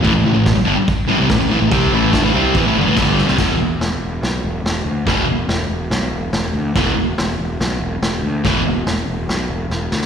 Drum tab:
CC |x---x---x---x---|x---x---x---x---|x---------------|----------------|
HH |----------------|----------------|----o---o---o---|o---o---o---o---|
SD |----o-------o---|----o-------o-oo|o---o---o---o---|o---o---o---o---|
BD |o---o---o---o---|o---o---o---o---|o---------------|o---------------|

CC |----------------|----------------|
HH |o---o---o---o---|o---o---o-------|
SD |o---o---o---o---|o---o---o---o-oo|
BD |o---------------|o---------------|